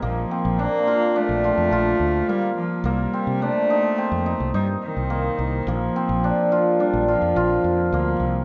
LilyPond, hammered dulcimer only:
\new Staff \with { instrumentName = "Hammered dulcimer" } { \time 5/4 \key bes \major \tempo 4 = 106 bes8 c'8 d'8 f'8 d'8 f'8 f'4 bes4 | bes8 c'8 d'8 ees'8 c'8 ees'8 ees'4 bes4 | bes8 c'8 d'8 f'8 d'8 f'8 f'4 bes4 | }